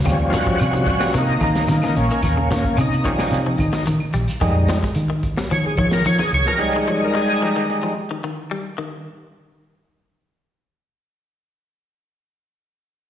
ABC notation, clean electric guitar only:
X:1
M:4/4
L:1/16
Q:1/4=110
K:Ebmix
V:1 name="Clean electric guitar" clef=bass
D,2 E, F,2 E,2 G, E,2 D,2 D, D,2 E,- | E, D, E,2 D,2 E, D,2 F,2 E, E,2 G,2 | E,2 F, z2 E,2 G, F,2 E,2 E, E,2 F,- | F, E, F,2 z2 F, E,2 F,2 E, E,2 G,2 |
E,2 z12 z2 | z16 |]